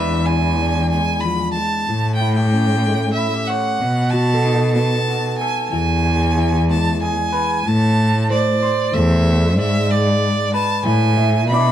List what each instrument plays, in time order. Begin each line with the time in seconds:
Already playing: cello E2, clean electric guitar E3 G#3 D4 E4 B4, violin E5
0.26 clean electric guitar E4, violin G#5
0.61 clean electric guitar D4
0.90 clean electric guitar G#3, violin G#5
1.20 violin B5
1.24 clean electric guitar F3
1.51 violin A5
1.56 clean electric guitar G#3
1.89 cello A2, clean electric guitar A2
2.15 violin G5
2.21 clean electric guitar E4
2.33 clean electric guitar G4, violin G5
2.53 clean electric guitar C#4
2.87 clean electric guitar A3
3.13 violin E5
3.17 clean electric guitar E4
3.34 clean electric guitar G4
3.47 clean electric guitar C#5, violin F#5
3.81 clean electric guitar B2, cello B2
4.10 clean electric guitar F#4, steel-string acoustic guitar F#4, violin A5
4.34 steel-string acoustic guitar A4
4.45 clean electric guitar D#4
4.73 clean electric guitar B3, violin A5
5.08 clean electric guitar F#4
5.38 clean electric guitar A4, violin G#5
5.70 cello E2, clean electric guitar E3, violin G#5
6.05 clean electric guitar G#4
6.37 clean electric guitar E4
6.69 clean electric guitar G#3, violin A5
7.02 clean electric guitar G#4, violin G#5
7.33 clean electric guitar B4
7.65 cello A2, clean electric guitar A2, violin A5
8.30 steel-string acoustic guitar C5, violin D5
8.63 clean electric guitar C5
8.93 cello E2, clean electric guitar A3, violin E5
9.57 cello G#2, clean electric guitar G#3, steel-string acoustic guitar D5, violin E5
9.90 violin D5
10.54 clean electric guitar B4, violin A5
10.85 cello A2, clean electric guitar E4, violin G#5
11.17 steel-string acoustic guitar E5
11.49 cello B2, clean electric guitar B2 B3 D4 E4, steel-string acoustic guitar E5, violin B5
11.54 clean electric guitar D5